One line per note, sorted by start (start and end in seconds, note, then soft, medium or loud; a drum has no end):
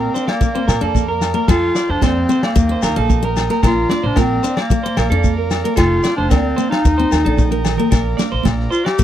0.00 0.31 C4 medium
0.00 0.13 A#4 medium
0.00 1.47 A#4 medium
0.00 1.47 D5 medium
0.00 2.53 F5 medium
0.14 0.35 D4 medium
0.14 0.27 C5 medium
0.14 shekere medium
0.27 1.22 A#3 medium
0.27 0.54 D5 medium
0.27 snare medium
0.27 low agogo medium
0.41 0.51 A#3 medium
0.41 kick medium
0.41 shekere medium
0.55 0.75 C4 medium
0.55 0.67 C5 medium
0.68 0.79 A#2 medium
0.68 0.81 A#4 medium
0.68 snare medium
0.68 low agogo medium
0.68 shekere medium
0.81 1.33 F2 medium
0.81 1.01 D4 medium
0.81 1.08 A4 medium
0.95 kick medium
0.95 high conga medium
0.95 shekere medium
1.08 1.34 A#4 medium
1.21 snare medium
1.21 low agogo medium
1.21 shekere medium
1.34 1.44 A#3 medium
1.34 1.48 A#4 medium
1.48 1.69 F2 medium
1.48 1.69 A3 medium
1.48 1.92 F4 loud
1.48 2.55 A4 medium
1.48 1.74 A4 medium
1.48 3.61 G5 medium
1.48 kick medium
1.48 snare medium
1.48 muted conga soft
1.48 low agogo medium
1.48 shekere medium
1.75 1.89 D5 medium
1.75 snare medium
1.75 muted conga soft
1.75 shekere medium
1.89 1.99 F2 medium
1.89 2.04 D4 medium
1.89 2.02 C5 medium
2.02 2.23 F2 medium
2.02 2.46 C4 medium
2.02 2.22 D4 medium
2.02 2.28 C5 medium
2.02 kick medium
2.02 snare medium
2.02 high conga medium
2.02 low agogo medium
2.02 shekere medium
2.29 2.49 C4 medium
2.29 2.43 C5 medium
2.29 muted conga soft
2.29 high conga medium
2.29 shekere medium
2.43 3.37 A#3 medium
2.43 2.69 D5 medium
2.43 snare medium
2.43 low agogo medium
2.56 2.76 D#2 medium
2.56 2.66 A#3 medium
2.56 3.64 A#4 medium
2.56 3.64 D#5 medium
2.56 kick loud
2.56 shekere medium
2.69 2.89 C4 medium
2.69 2.83 C5 medium
2.83 2.94 D#2 medium
2.83 2.96 A#4 medium
2.83 snare medium
2.83 low agogo medium
2.83 shekere medium
2.96 3.48 A#1 medium
2.96 3.23 A4 medium
2.96 muted steel-string acoustic guitar stroke medium
3.10 kick medium
3.10 high conga medium
3.10 shekere loud
3.23 3.43 A#3 medium
3.23 3.50 A#4 medium
3.37 snare medium
3.37 low agogo medium
3.37 shekere medium
3.50 3.60 A#3 medium
3.50 3.62 A#4 medium
3.50 snare soft
3.63 3.84 A#1 medium
3.63 3.83 A#3 medium
3.63 4.08 F4 loud
3.63 3.89 A#4 medium
3.63 5.77 D5 medium
3.63 6.83 F5 medium
3.63 5.77 A#5 medium
3.63 kick medium
3.63 snare medium
3.63 low agogo medium
3.63 shekere medium
3.89 4.10 D4 medium
3.89 4.03 D5 medium
3.89 snare medium
3.89 muted conga soft
3.89 high conga medium
4.03 4.14 A#1 medium
4.03 4.18 D4 medium
4.03 4.16 C5 medium
4.16 4.37 A#1 medium
4.16 4.36 F4 medium
4.16 4.42 A#4 medium
4.16 kick medium
4.16 snare medium
4.16 high conga medium
4.16 low agogo medium
4.16 shekere medium
4.20 4.56 C4 medium
4.43 4.64 D4 medium
4.43 4.57 C5 medium
4.43 muted conga soft
4.43 shekere medium
4.57 5.48 A#3 medium
4.57 4.83 D5 medium
4.57 snare medium
4.57 low agogo medium
4.70 4.81 A#3 medium
4.70 kick medium
4.70 shekere medium
4.83 4.96 C5 medium
4.83 muted steel-string acoustic guitar stroke medium
4.97 5.08 A#1 loud
4.97 5.10 A#4 medium
4.97 snare medium
4.97 low agogo medium
4.97 shekere medium
5.10 5.62 F2 medium
5.10 5.31 D4 medium
5.10 5.36 A4 medium
5.24 kick medium
5.24 high conga medium
5.24 shekere medium
5.37 5.63 A#4 medium
5.51 snare medium
5.51 low agogo medium
5.51 shekere medium
5.64 5.74 A#3 medium
5.64 5.76 A#4 medium
5.76 5.98 F1 medium
5.76 5.97 A3 medium
5.76 6.16 F4 loud
5.76 6.02 A4 medium
5.76 7.91 G5 medium
5.76 6.84 A5 medium
5.76 kick medium
5.76 snare medium
5.76 low agogo medium
5.76 shekere medium
6.04 6.24 C4 medium
6.04 6.17 D5 medium
6.04 snare medium
6.04 muted conga soft
6.04 shekere medium
6.17 6.28 F1 medium
6.17 6.31 D4 medium
6.17 6.30 C5 medium
6.30 6.51 D2 medium
6.30 6.69 C4 medium
6.30 6.51 D4 medium
6.30 6.56 A#4 medium
6.30 kick medium
6.30 snare medium
6.30 high conga medium
6.30 low agogo medium
6.30 shekere medium
6.56 6.77 C4 medium
6.56 6.70 C5 medium
6.56 muted conga soft
6.56 high conga medium
6.56 shekere medium
6.70 7.60 D#4 medium
6.70 6.97 F5 medium
6.70 snare medium
6.70 low agogo medium
6.85 7.05 D#2 medium
6.85 6.95 A#3 medium
6.85 7.91 D#5 medium
6.85 9.04 A#5 medium
6.85 kick loud
6.85 snare soft
6.85 shekere medium
6.98 7.19 C4 medium
6.98 7.10 C5 medium
7.11 7.22 D#2 loud
7.11 7.24 A#4 medium
7.11 snare medium
7.11 low agogo medium
7.11 shekere medium
7.25 7.76 A#1 medium
7.25 7.45 D4 medium
7.25 7.50 A4 medium
7.37 kick medium
7.37 high conga medium
7.37 shekere medium
7.51 7.71 A#3 medium
7.51 7.77 A#4 medium
7.51 high conga medium
7.64 snare medium
7.64 low conga medium
7.64 low agogo medium
7.64 shekere medium
7.77 7.89 A#3 medium
7.77 7.90 A#4 medium
7.77 low conga medium
7.91 8.12 A#1 medium
7.91 8.11 A#3 medium
7.91 8.17 A#4 medium
7.91 9.04 D5 medium
7.91 9.04 F5 medium
7.91 kick medium
7.91 snare medium
7.91 low agogo medium
7.91 shekere loud
8.17 8.39 D4 medium
8.17 8.31 D5 medium
8.17 snare medium
8.17 muted conga soft
8.17 high conga medium
8.17 shekere medium
8.32 8.42 A#1 medium
8.32 8.44 C5 medium
8.43 8.66 A#1 medium
8.43 8.65 F4 medium
8.43 kick medium
8.43 snare medium
8.43 high conga medium
8.43 low agogo medium
8.43 shekere medium
8.60 snare soft
8.70 8.86 F4 medium
8.70 8.84 C5 medium
8.70 muted conga soft
8.70 shekere medium
8.85 9.04 G4 loud
8.85 9.04 D5 medium
8.85 snare medium
8.85 low agogo medium
8.99 9.04 A#3 medium
8.99 kick medium
8.99 shekere medium